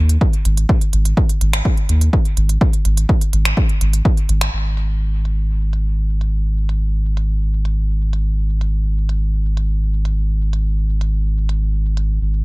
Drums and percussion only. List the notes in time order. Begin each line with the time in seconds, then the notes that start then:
0.09 closed hi-hat
0.21 kick
0.33 closed hi-hat
0.45 closed hi-hat
0.57 closed hi-hat
0.69 kick
0.81 closed hi-hat
0.93 closed hi-hat
1.05 closed hi-hat
1.17 kick
1.29 closed hi-hat
1.41 closed hi-hat
1.53 finger snap, closed hi-hat
1.65 kick
1.77 closed hi-hat
1.89 closed hi-hat
2.01 closed hi-hat
2.13 kick
2.25 closed hi-hat
2.37 closed hi-hat
2.49 closed hi-hat
2.61 kick
2.73 closed hi-hat
2.85 closed hi-hat
2.97 closed hi-hat
3.09 kick
3.21 closed hi-hat
3.33 closed hi-hat
3.45 finger snap, closed hi-hat
3.57 kick
3.69 closed hi-hat
3.81 closed hi-hat
3.93 closed hi-hat
4.05 kick
4.17 closed hi-hat
4.29 closed hi-hat
4.41 finger snap, closed hi-hat
4.53 crash
4.77 closed hi-hat
5.25 closed hi-hat
5.73 closed hi-hat
6.21 closed hi-hat
6.69 closed hi-hat
7.17 closed hi-hat
7.65 closed hi-hat
8.13 closed hi-hat
8.61 closed hi-hat
9.09 closed hi-hat
9.57 closed hi-hat
10.05 closed hi-hat
10.53 closed hi-hat
11.01 closed hi-hat
11.49 closed hi-hat
11.97 closed hi-hat